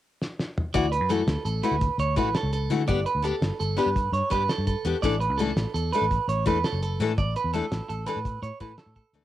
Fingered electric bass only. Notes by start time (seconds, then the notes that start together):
0.75 D2
1.01 F#2
1.27 D2
1.45 A1
1.71 D2
1.98 D2
2.17 A1
2.43 C#2
2.70 D3
2.88 G1
3.15 D2
3.42 G1
3.60 G1
3.86 G2
4.12 G2
4.31 G2
4.58 G2
4.85 E2
5.03 A1
5.30 C#2
5.56 A1
5.74 E2
6.02 A1
6.28 A1
6.46 E2
6.72 F#1
7.00 A2
7.18 A1
7.44 E2
7.72 A1
7.90 A1
8.16 A2
8.42 A2
8.61 A2
8.86 A2
9.13 D2